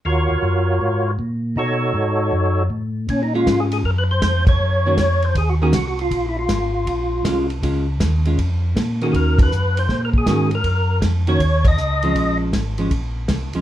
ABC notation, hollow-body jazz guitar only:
X:1
M:4/4
L:1/8
Q:"Swing" 1/4=159
K:Bbm
V:1 name="Hollow-body jazz guitar"
z8 | z8 | z [A,DF]3 z4 | z [E,B,DG] z3 [E,B,DG] z2 |
z6 [A,DF] z | [A,DF] z2 [A,DF] z3 [E,B,DG]- | [E,B,DG]2 z4 [E,B,DG] z | z3 [E,B,DG] z3 [F,A,D]- |
[F,A,D]2 z [F,A,D] z3 [F,A,D] |]